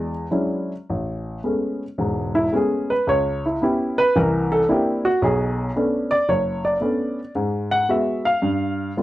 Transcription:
grand piano
Already playing: E2 G#3 F#4 D5
0.31 F#3 G#3 C#4 D4 E4
0.90 A1
1.44 G#3 A3 B3 C#4
1.98 E1 G#2
2.35 E4
2.52 G#3 A3 B3 C#4 G#4
2.90 B4
3.07 C#2 C#5
3.46 E4
3.62 B3 C#4 E4 G4
3.98 B4
4.16 C2 E3 A#4
4.52 A4
4.69 A#3 C4 D4 E4 G4
5.05 F#4
5.22 B1 B2 G#4
5.76 A3 B3 C#4 D4
6.11 D5
6.29 F#1 C#5
6.65 D5
6.80 A3 B3 C#4 D4
7.35 G#2
7.71 F#5
7.89 G#3 B3 F#4 E5
8.25 F5
8.42 G2
8.97 G3 A3 B3 F4

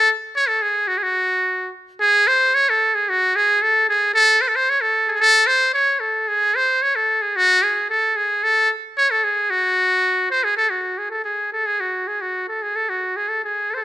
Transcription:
muted trumpet
0.36 C#5
0.48 A4
0.62 G#4
0.88 F#4
0.98 G#4
1.03 F#4
2.01 G#4
2.28 C5
2.54 C#5
2.69 A4
2.95 G#4
3.09 F#4
3.36 G#4
3.62 A4
3.89 G#4
4.14 A4
4.41 C5
4.48 A4
4.55 C5
4.69 C#5
4.81 A4
5.08 G#4 A4
5.13 G#4
5.20 A4
5.47 C5
5.74 C#5
6.00 A4
6.28 G#4
6.56 C5
6.82 C#5
6.96 A4
7.21 G#4
7.36 F#4
7.63 G#4
7.90 A4
8.16 G#4
8.43 A4
8.97 C#5
9.11 A4
9.24 G#4
9.50 F#4
10.31 C5
10.44 G#4
10.57 A4
10.70 F#4
10.98 G#4
11.10 A4
11.24 G#4
11.53 A4
11.66 G#4
11.80 F#4
12.07 G#4
12.21 F#4
12.48 A4
12.62 G#4
12.76 A4
12.89 F#4
13.16 G#4
13.29 A4
13.44 G#4
13.70 A4 C5
13.77 A4

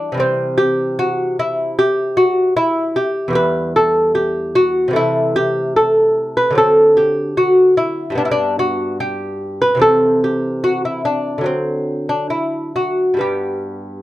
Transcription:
lute
Already playing: E3 G3 D4
0.12 C3 E3
0.17 G3 C4
0.58 G4
0.99 F#4
1.39 E4
1.79 G4
2.17 F#4
2.57 E4
2.96 G4
3.28 E2 E3
3.33 G3 B4
3.76 A4
4.15 G4
4.55 F#4
4.88 C3 E3
4.93 A3 E4
5.36 G4
5.76 A4
6.37 B4
6.51 D3 F#3
6.55 C4 A4
6.97 G4
7.37 F#4
7.77 E4
8.10 G2 G3
8.15 B3 D4
8.25 E4
8.31 D4
8.59 F#4
9.00 G4
9.62 B4
9.75 C3 E3
9.79 C4 A4
10.24 G4
10.64 F#4
10.85 E4
11.05 D4
11.38 D3 F#3
11.44 A3 C4
12.09 D4
12.30 E4
12.76 F#4
13.14 G2 G3
13.19 B3 G4

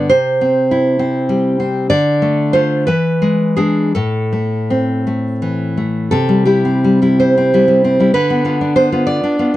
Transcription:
nylon-string guitar
Already playing: D3
0.09 C3 C5
0.41 C4
0.71 E4
0.99 C4
1.29 G3
1.60 C4
1.90 D3 D5
2.22 A3
2.53 A3 F4 C5
2.87 E3 B4
3.22 G#3
3.57 G#3 D4 G#4
3.95 A2 A4
4.33 A3
4.70 C4
5.07 A3
5.42 E3
5.77 A3
6.11 C3 A4
6.29 G3
6.45 G3 E4 G4
6.65 C4
6.84 G3
7.02 G3 E4
7.20 C5
7.37 C4
7.54 G3 E4
7.68 G3
7.84 C4
8.00 G3 E4
8.14 D3 B4
8.30 B3
8.45 B3 F4
8.61 D4
8.76 B3 C5
8.92 B3 F4
9.07 D5
9.24 D4
9.39 B3 F4

